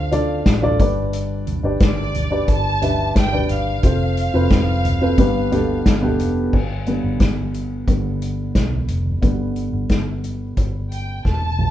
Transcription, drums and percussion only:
0.12 closed hi-hat, floor tom
0.46 kick, snare, closed hi-hat
0.63 floor tom
0.80 kick, closed hi-hat
1.13 closed hi-hat
1.47 closed hi-hat, floor tom
1.80 kick, snare, closed hi-hat
2.15 closed hi-hat, floor tom
2.48 kick, closed hi-hat
2.82 closed hi-hat, floor tom
3.15 kick, snare, closed hi-hat
3.33 floor tom
3.49 closed hi-hat
3.83 kick, closed hi-hat
4.17 closed hi-hat
4.50 kick, snare, closed hi-hat
4.85 closed hi-hat, floor tom
5.18 kick, closed hi-hat
5.52 closed hi-hat, floor tom
5.86 kick, snare, closed hi-hat
6.03 floor tom
6.20 closed hi-hat
6.53 kick, crash
6.86 closed hi-hat
7.20 kick, snare, closed hi-hat
7.54 closed hi-hat
7.88 kick, closed hi-hat
8.22 closed hi-hat
8.55 kick, snare, closed hi-hat
8.72 floor tom
8.88 closed hi-hat
9.05 floor tom
9.23 kick, closed hi-hat
9.56 closed hi-hat
9.89 kick, snare, closed hi-hat
10.24 closed hi-hat
10.57 kick, closed hi-hat
10.92 closed hi-hat
11.25 kick, snare
11.42 high tom
11.59 mid tom

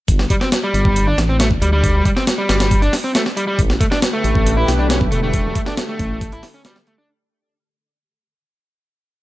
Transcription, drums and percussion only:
0.08 kick, closed hi-hat
0.19 snare
0.30 kick, closed hi-hat
0.41 snare
0.52 snare, closed hi-hat
0.74 closed hi-hat
0.85 kick
0.96 closed hi-hat
1.18 snare, closed hi-hat
1.40 snare, closed hi-hat
1.51 kick
1.62 closed hi-hat
1.84 kick, closed hi-hat
2.05 kick, closed hi-hat
2.17 snare
2.27 snare, closed hi-hat
2.49 snare, closed hi-hat
2.60 snare, closed hi-hat
2.71 kick, closed hi-hat
2.82 closed hi-hat
2.93 snare, open hi-hat
3.15 snare, closed hi-hat
3.26 snare
3.37 closed hi-hat
3.59 kick, closed hi-hat
3.70 snare
3.81 kick, closed hi-hat
3.92 snare
4.02 snare, closed hi-hat
4.24 closed hi-hat
4.35 kick
4.46 closed hi-hat
4.68 snare, closed hi-hat
4.90 snare, closed hi-hat
5.01 kick
5.12 closed hi-hat
5.33 kick, closed hi-hat
5.55 kick, closed hi-hat
5.66 snare
5.77 snare, closed hi-hat
5.99 kick, closed hi-hat
6.21 kick, closed hi-hat
6.32 closed hi-hat
6.43 snare, open hi-hat
6.65 snare, closed hi-hat
6.76 snare
6.87 closed hi-hat

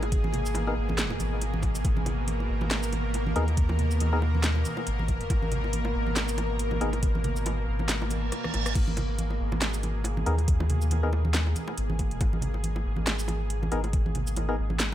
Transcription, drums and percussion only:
0.03 closed hi-hat, high bongo
0.12 kick, closed hi-hat
0.24 high conga
0.33 closed hi-hat, high bongo, low conga
0.46 shaker
0.55 closed hi-hat, high bongo, high conga
0.89 high bongo, high conga
0.98 snare, clap, closed hi-hat, shaker
1.10 high bongo
1.20 closed hi-hat, high conga, shaker
1.41 closed hi-hat, high bongo
1.54 high conga
1.62 kick, closed hi-hat, high bongo
1.75 closed hi-hat, shaker
1.85 kick, closed hi-hat, high bongo
1.97 high conga
2.06 closed hi-hat, high bongo, low conga
2.27 closed hi-hat, high conga
2.40 high bongo
2.61 high bongo, high conga
2.71 snare, clap, closed hi-hat
2.83 shaker
2.92 closed hi-hat, high bongo, high conga
3.14 closed hi-hat, high bongo
3.26 high conga
3.36 closed hi-hat
3.48 closed hi-hat, high bongo
3.57 kick, closed hi-hat
3.69 high bongo, high conga
3.79 closed hi-hat, low conga
3.91 shaker
4.00 closed hi-hat, high bongo, high conga
4.22 high bongo
4.35 high conga
4.44 snare, clap, closed hi-hat, shaker
4.55 high bongo
4.65 closed hi-hat, high conga, shaker
4.77 high bongo
4.87 closed hi-hat
4.99 high conga
5.08 kick, closed hi-hat, high bongo
5.21 closed hi-hat
5.30 kick, closed hi-hat, high bongo
5.42 high conga
5.52 closed hi-hat, low conga
5.64 high bongo
5.73 closed hi-hat, high conga
5.85 high bongo
6.07 high conga
6.16 snare, clap, closed hi-hat, high bongo
6.28 shaker
6.38 closed hi-hat, high bongo, high conga
6.59 closed hi-hat
6.71 high bongo, high conga
6.81 closed hi-hat
6.93 closed hi-hat, high bongo
7.03 kick, closed hi-hat
7.15 high conga
7.24 closed hi-hat, high bongo, low conga
7.36 shaker
7.46 closed hi-hat, high bongo, high conga
7.79 high bongo, high conga
7.89 snare, clap, closed hi-hat, shaker
8.02 high bongo
8.10 closed hi-hat, high conga, shaker
8.32 cross-stick, closed hi-hat, high bongo
8.44 cross-stick, high conga
8.54 closed hi-hat, high bongo
8.66 cross-stick, closed hi-hat, shaker
8.75 kick, closed hi-hat, crash, high bongo
8.88 high conga
8.97 closed hi-hat, high bongo, low conga
9.18 closed hi-hat, high conga
9.30 high bongo
9.52 high bongo, high conga
9.62 snare, clap, closed hi-hat
9.74 shaker
9.83 closed hi-hat, high bongo, high conga
10.04 closed hi-hat, high bongo
10.17 high conga
10.26 closed hi-hat
10.38 closed hi-hat, high bongo
10.48 kick, closed hi-hat
10.60 high bongo, high conga
10.70 closed hi-hat, low conga
10.82 shaker
10.91 closed hi-hat, high bongo, high conga
11.13 high bongo
11.25 high conga
11.34 snare, clap, closed hi-hat, shaker
11.47 high bongo
11.56 closed hi-hat, high conga, shaker
11.68 high bongo
11.78 closed hi-hat
11.90 high conga
11.99 kick, closed hi-hat, high bongo
12.11 closed hi-hat
12.21 kick, closed hi-hat, high bongo
12.33 high conga
12.42 closed hi-hat, low conga
12.54 high bongo
12.64 closed hi-hat, high conga
12.76 high bongo
12.96 high conga
13.07 snare, clap, closed hi-hat, high bongo
13.19 shaker
13.28 closed hi-hat, high bongo, high conga
13.50 closed hi-hat
13.63 high bongo, high conga
13.72 closed hi-hat
13.84 closed hi-hat, high bongo
13.93 kick, closed hi-hat
14.06 high conga
14.15 closed hi-hat, high bongo, low conga
14.27 shaker
14.36 closed hi-hat, high bongo, high conga
14.70 high bongo, high conga
14.80 snare, clap, closed hi-hat, shaker

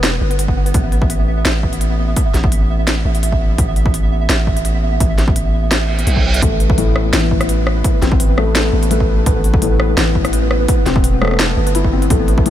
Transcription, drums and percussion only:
0.03 snare, closed hi-hat
0.31 closed hi-hat
0.39 closed hi-hat
0.48 kick
0.66 closed hi-hat
0.74 kick, closed hi-hat
0.92 closed hi-hat
1.02 kick
1.10 closed hi-hat
1.45 snare, closed hi-hat
1.63 kick
1.73 closed hi-hat
1.81 closed hi-hat
2.16 kick, closed hi-hat
2.34 snare, closed hi-hat
2.44 kick
2.52 closed hi-hat
2.87 snare, closed hi-hat
3.15 closed hi-hat
3.23 closed hi-hat
3.32 kick
3.58 kick, closed hi-hat
3.76 closed hi-hat
3.86 kick
3.94 closed hi-hat
4.29 snare, closed hi-hat
4.47 kick
4.57 closed hi-hat
4.65 closed hi-hat
5.00 kick, closed hi-hat
5.18 snare, closed hi-hat
5.28 kick
5.36 closed hi-hat
5.71 snare, closed hi-hat
5.99 closed hi-hat
6.07 closed hi-hat
6.16 kick
6.34 closed hi-hat
6.42 kick, closed hi-hat
6.60 closed hi-hat
6.70 kick
6.78 closed hi-hat
6.96 cross-stick
7.13 snare, closed hi-hat
7.31 kick
7.41 cross-stick, closed hi-hat
7.49 closed hi-hat
7.67 cross-stick
7.84 kick, closed hi-hat
8.02 snare, closed hi-hat
8.12 kick
8.20 closed hi-hat
8.38 cross-stick
8.55 snare, closed hi-hat
8.83 closed hi-hat
8.91 closed hi-hat
9.00 kick
9.26 kick, closed hi-hat
9.44 closed hi-hat
9.54 kick
9.62 closed hi-hat
9.80 cross-stick
9.97 snare, closed hi-hat
10.15 kick
10.25 cross-stick, closed hi-hat
10.33 closed hi-hat
10.51 cross-stick
10.68 kick, closed hi-hat
10.86 snare, closed hi-hat
10.96 kick
11.04 closed hi-hat
11.22 cross-stick
11.25 cross-stick
11.28 cross-stick
11.31 cross-stick
11.34 cross-stick
11.37 cross-stick, snare, closed hi-hat
11.67 closed hi-hat
11.75 closed hi-hat
11.84 kick
12.02 closed hi-hat
12.10 kick, closed hi-hat
12.28 closed hi-hat
12.38 kick
12.46 closed hi-hat

